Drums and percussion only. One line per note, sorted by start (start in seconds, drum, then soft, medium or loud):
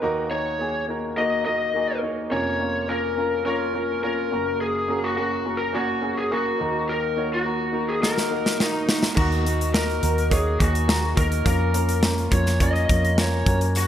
8.03 snare soft
8.18 snare soft
8.46 snare medium
8.60 snare medium
8.89 snare medium
9.03 snare medium
9.17 kick medium
9.17 crash medium
9.32 closed hi-hat soft
9.46 closed hi-hat medium
9.61 closed hi-hat soft
9.74 snare loud
9.90 closed hi-hat soft
10.03 closed hi-hat medium
10.18 closed hi-hat soft
10.31 kick medium
10.31 closed hi-hat medium
10.60 kick medium
10.60 closed hi-hat medium
10.75 closed hi-hat soft
10.89 snare loud
11.17 kick medium
11.17 closed hi-hat medium
11.32 closed hi-hat soft
11.46 kick medium
11.46 closed hi-hat medium
11.74 closed hi-hat medium
11.89 closed hi-hat medium
12.03 snare medium
12.18 closed hi-hat soft
12.32 kick medium
12.32 closed hi-hat medium
12.46 snare soft
12.46 closed hi-hat soft
12.60 kick medium
12.60 closed hi-hat medium
12.76 closed hi-hat soft
12.89 kick medium
12.89 closed hi-hat medium
13.05 closed hi-hat soft
13.18 snare medium
13.46 kick loud
13.46 closed hi-hat medium
13.61 closed hi-hat soft
13.75 closed hi-hat medium
13.75 tambourine soft